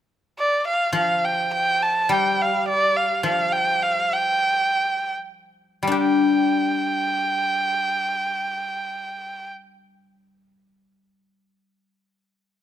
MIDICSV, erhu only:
0, 0, Header, 1, 2, 480
1, 0, Start_track
1, 0, Tempo, 576923
1, 790, Time_signature, 2, 2, 24, 8
1, 3194, Tempo, 617920
1, 3674, Tempo, 688863
1, 4154, Tempo, 789474
1, 4634, Tempo, 834492
1, 8480, End_track
2, 0, Start_track
2, 0, Title_t, "Erhu"
2, 0, Program_c, 0, 110
2, 323, Note_on_c, 0, 74, 79
2, 538, Note_off_c, 0, 74, 0
2, 557, Note_on_c, 0, 77, 69
2, 778, Note_off_c, 0, 77, 0
2, 798, Note_on_c, 0, 77, 63
2, 1039, Note_on_c, 0, 79, 67
2, 1052, Note_off_c, 0, 77, 0
2, 1270, Note_off_c, 0, 79, 0
2, 1275, Note_on_c, 0, 79, 82
2, 1515, Note_on_c, 0, 81, 77
2, 1528, Note_off_c, 0, 79, 0
2, 1763, Note_on_c, 0, 79, 73
2, 1776, Note_off_c, 0, 81, 0
2, 2008, Note_on_c, 0, 77, 66
2, 2021, Note_off_c, 0, 79, 0
2, 2224, Note_off_c, 0, 77, 0
2, 2229, Note_on_c, 0, 74, 79
2, 2466, Note_on_c, 0, 77, 69
2, 2479, Note_off_c, 0, 74, 0
2, 2708, Note_off_c, 0, 77, 0
2, 2711, Note_on_c, 0, 77, 73
2, 2933, Note_on_c, 0, 79, 77
2, 2945, Note_off_c, 0, 77, 0
2, 3182, Note_on_c, 0, 77, 76
2, 3194, Note_off_c, 0, 79, 0
2, 3417, Note_on_c, 0, 79, 75
2, 3429, Note_off_c, 0, 77, 0
2, 4150, Note_off_c, 0, 79, 0
2, 4629, Note_on_c, 0, 79, 66
2, 6673, Note_off_c, 0, 79, 0
2, 8480, End_track
0, 0, End_of_file